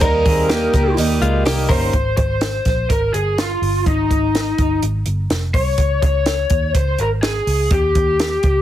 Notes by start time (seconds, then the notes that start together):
0.01 D#2 D#3 G3 A#3 D#4 A#4, kick, hi-hat pedal, open hi-hat
0.25 D#2 C4 G#4, kick, hi-hat pedal, open hi-hat
0.49 D#3 G3 A#3 D#4 G4, snare, hi-hat pedal, open hi-hat
0.74 C#2 G3 A#3 D#4, kick, hi-hat pedal, open hi-hat
0.97 D#2 D#3 G3 A#3 D#4, hi-hat pedal, open hi-hat
1.21 C#2 G#3 F4, hi-hat pedal, open hi-hat
1.45 C2 D#3 G3 A#3 D#4 G4, snare, hi-hat pedal, open hi-hat
1.69 G1 G3 A#3 C#4 D#4 A#4 C5, kick, hi-hat pedal, open hi-hat
1.93 G#1, kick, closed hi-hat
2.17 G#1 C5, kick, closed hi-hat
2.41 snare, closed hi-hat
2.65 A#1, kick, snare, closed hi-hat
2.90 G#1 A#4, kick, closed hi-hat
3.13 G1 G#4, closed hi-hat
3.38 F4, snare, closed hi-hat
3.62 G1, open hi-hat
3.86 G#1 D#4, kick, closed hi-hat
4.11 G#1, kick, closed hi-hat
4.35 snare, closed hi-hat
4.58 G1, kick, closed hi-hat
4.82 G#1, closed hi-hat
5.06 G1, closed hi-hat
5.30 F1, snare, closed hi-hat
5.54 C2 C#5, kick, open hi-hat
5.78 C#2, kick, closed hi-hat
6.02 C#2 C#5, kick, closed hi-hat
6.26 snare, closed hi-hat
6.50 D#2, kick, closed hi-hat
6.75 C#2 C5, kick, closed hi-hat
6.98 G#1 A#4, closed hi-hat
7.23 G#4, snare, closed hi-hat
7.47 C#2, open hi-hat
7.71 D#2 G4, kick, closed hi-hat
7.95 D#2, kick, closed hi-hat
8.20 snare, closed hi-hat
8.43 C#2, kick, closed hi-hat